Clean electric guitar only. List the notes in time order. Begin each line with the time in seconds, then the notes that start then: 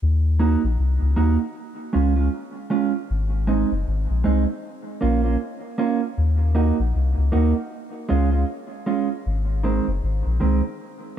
0.39 A#3 D#4 F#4
1.16 A#3 D#4 F#4
1.39 muted clean electric guitar stroke
1.93 G#3 C#4 F4
2.16 G#3 C#4 F4
2.70 G#3 C#4 F4
3.47 G#3 C4 D#4
4.24 G#3 C4 D#4
4.47 muted clean electric guitar stroke
5.01 A#3 C#4 F4
5.24 A#3 C#4 F4
5.78 A#3 C#4 F4
6.55 A#3 D#4 F#4
7.32 A#3 D#4 F#4
7.55 muted clean electric guitar stroke
8.09 G#3 C#4 F4
8.32 G#3 C#4 F4
8.86 G#3 C#4 F4
9.63 D#3 G#3 C4
10.40 D#3 G#3 C4
10.63 muted clean electric guitar stroke